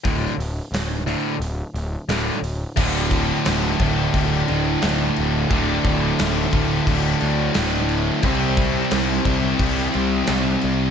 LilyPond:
<<
  \new Staff \with { instrumentName = "Distorted electric guitar" } { \time 4/4 \key d \minor \tempo 4 = 88 r1 | <d, a, d a f'>4. <d, a, d a f'>2~ <d, a, d a f'>8 | <d, a, d a f'>4. <a, d a f'>2~ <a, d a f'>8 | <c g c' e' g' c''>4. <c g c' e' g' c''>2~ <c g c' e' g' c''>8 | }
  \new Staff \with { instrumentName = "Distorted electric guitar" } { \clef bass \time 4/4 \key d \minor <d, a, d>8 r4 <d, a, d>8 r4 <d, a, d>8 r8 | <d, a, d>2~ <d, a, d>8 <d, a, d>8 <d, a, d>4 | <d, a, d>2~ <d, a, d>8 <d, a, d>8 <d, a, d>4 | <c g c'>2~ <c g c'>8 <c g c'>8 <c g c'>4 | }
  \new Staff \with { instrumentName = "Distorted electric guitar" } { \clef bass \time 4/4 \key d \minor <d, a, d>8 r4 <d, a, d>8 r4 <d, a, d>8 r8 | <d, a, d>1 | <d, a, d>1 | <c g c'>1 | }
  \new Staff \with { instrumentName = "Picked electric bass" } { \clef bass \time 4/4 \key d \minor d,,8 d,,8 d,,4 d,,8 d,,8 d,,8 d,,8 | d,,4 d,,8 d,,8 d,,8 d,,8 d,,8 d,,8 | d,,8 d,,8 d,,8 d,,8 d,,8 d,8 d,,4 | c,4 c,8 c,8 c,8 c,8 c,8 c,8 | }
  \new DrumStaff \with { instrumentName = "Drums" } \drummode { \time 4/4 <hho bd>8 hho8 <hho sn>8 hho8 hho8 hho8 <hho sn>8 hho8 | <cymc bd>8 <cymc bd>8 <cymc sn>8 <cymc bd>8 <cymc bd>8 cymc8 <cymc sn>8 cymc8 | <cymc bd>8 <cymc bd>8 <cymc sn>8 <cymc bd>8 <cymc bd>8 cymc8 <cymc sn>8 cymc8 | <cymc bd>8 <cymc bd>8 <cymc sn>8 <cymc bd>8 <cymc bd>16 sn16 cymc8 <cymc sn>8 cymc8 | }
>>